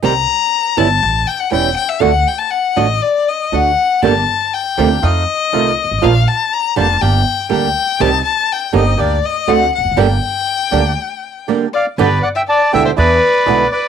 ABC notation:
X:1
M:4/4
L:1/16
Q:1/4=121
K:Gm
V:1 name="Violin"
b6 a4 g ^f g2 g =e | ^f2 g a f2 e2 d2 e2 f4 | a4 g4 e8 | f2 a2 b2 a2 g4 g4 |
a2 a2 g2 e2 d2 e2 ^f2 f2 | g12 z2 d2 | [K:G] B2 d e d2 e c B6 B2 |]
V:2 name="Bandoneon"
z16 | z16 | z16 | z16 |
z16 | z12 z2 [df]2 | [K:G] [Bd]2 [df] [eg] [da]2 [eg] [ce] [Bd]6 [Bd]2 |]
V:3 name="Bandoneon"
z16 | z16 | [B,DG]2 z4 [B,DG]2 [A,EF]2 z2 [A,EF]2 z2 | [B,DF]2 z4 [B,DF]2 [B,DG]2 z2 [B,DG]2 z2 |
[CEG]2 z4 [CEG]2 [B,DG]2 z2 [CD^F]2 z2 | [B,DG]2 z4 [B,DG]2 z4 [B,DG]2 z2 | [K:G] [B,DG]2 z4 [B,DG]2 [DE^G]2 z2 [DEG]2 z2 |]
V:4 name="Nylon-string guitar"
[C,E,G,CG]2 z4 [=E,G,^C=E]2 z4 [E,G,CE]2 z2 | [D,A,D^F]2 z4 [D,A,DF]2 z4 [D,A,DF]2 z2 | [D,G,B,DG]2 z4 [C,E,A,CF]2 z4 [C,E,A,CF]2 z2 | [F,B,DF]2 z4 [D,G,B,DG]2 z4 [D,G,B,DG]2 z2 |
[C,E,G,CG]2 z4 [D,B,DG]2 z4 [D,A,C^F]2 z2 | [D,G,B,DG]2 z4 [D,G,B,DG]2 z4 [D,G,B,DG]2 z2 | [K:G] [B,,D,G,B,G]2 z4 [B,,D,_A,B,E]2 z4 [B,,D,^G,B,E]2 z2 |]
V:5 name="Upright bass" clef=bass
C,,3/2 z4 z/2 G,,,3/2 z/2 A,,,3/2 z2 z/2 =E,,,3/2 z2 z/2 | D,,3/2 z4 z/2 A,,,3/2 z4 z/2 D,,3/2 z2 z/2 | G,,,3/2 z4 z/2 D,,3/2 z/2 F,,3/2 z2 z/2 C,,3/2 z G,,,/2 _A,,,/2 =A,,,/2 | B,,,3/2 z4 z/2 F,,,3/2 z/2 G,,,3/2 z2 z/2 D,,3/2 z2 z/2 |
C,,3/2 z4 z/2 G,,,3/2 z/2 D,,3/2 z2 z/2 D,,3/2 z =E,,,/2 F,,,/2 ^F,,,/2 | G,,,3/2 z4 z/2 D,,3/2 z8 z/2 | [K:G] G,,,3/2 z4 z/2 D,,3/2 z/2 E,,3/2 z2 z/2 B,,,3/2 z2 z/2 |]